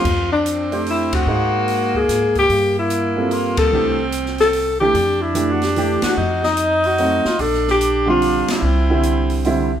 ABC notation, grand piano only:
X:1
M:3/4
L:1/8
Q:"Swing" 1/4=147
K:F
V:1 name="Grand piano"
z3 [A,DGc]3 | [B,_E_Ac]4- [B,EAc] z | z3 [G,CFA]3 | [E,A,DG] z4 [E,A,DG] |
z2 [E,A,DG] z [E,A,DG]2 | z4 [_G,A,C_E] z | z3 [D,G,CF]3 | z [D,G,CE]3 [D,G,CE] z |]